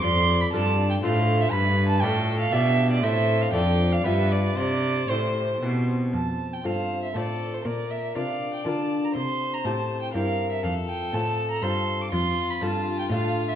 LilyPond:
<<
  \new Staff \with { instrumentName = "Violin" } { \time 3/4 \key c \major \tempo 4 = 120 c'''8. b''16 a''8. g''16 f''8. e''16 | b''8. a''16 g''8. f''16 e''8. d''16 | e''8. f''16 g''8. f''16 e''8 d''8 | d''4 c''4. r8 |
\key f \major a''8. g''16 f''8. e''16 d''8. c''16 | d''8 e''8 f''8. g''16 a''8. bes''16 | c'''8. bes''16 a''8. g''16 f''8. e''16 | f''8 g''8 a''8. bes''16 c'''8. d'''16 |
\key d \dorian c'''8. b''16 a''8. g''16 f''8. e''16 | }
  \new Staff \with { instrumentName = "Violin" } { \time 3/4 \key c \major d''4 d''4 c''4 | b'4 a'4 g'4 | c''4 d''4 b'4 | c''2~ c''8 r8 |
\key f \major r4 c''4 a'4 | bes'4 d''2 | c''2 bes'4 | a'2. |
\key d \dorian f'2. | }
  \new Staff \with { instrumentName = "Lute" } { \time 3/4 \key c \major f,4 <g, d' f' a'>4 <a, d' f' a'>4 | g,4 <a, d' f' d''>4 <b, d' f' d''>4 | <a, c' e' a'>4 <f, d' f' a'>4 <g, b f' g'>4 | c4 <a, c' e' g'>4 <b, c' e' g'>4 |
\key f \major f,4 <g, c' f' a'>4 <a, c' f' a'>4 | bes,4 <c d' f' bes'>4 <d d' f' bes'>4 | c4 <a, c' e' g'>4 <g, c' e' g'>4 | f,4 <a, c' f' a'>4 <g, c' f' a'>4 |
\key d \dorian f,4 <g, d' f' a'>4 <a, d' f' a'>4 | }
  \new Staff \with { instrumentName = "Cello" } { \clef bass \time 3/4 \key c \major f,4 g,4 a,4 | g,4 a,4 b,4 | a,4 f,4 g,4 | c4 a,4 b,4 |
\key f \major f,4 g,4 a,4 | bes,4 c4 d4 | c4 a,4 g,4 | f,4 a,4 g,4 |
\key d \dorian f,4 g,4 a,4 | }
>>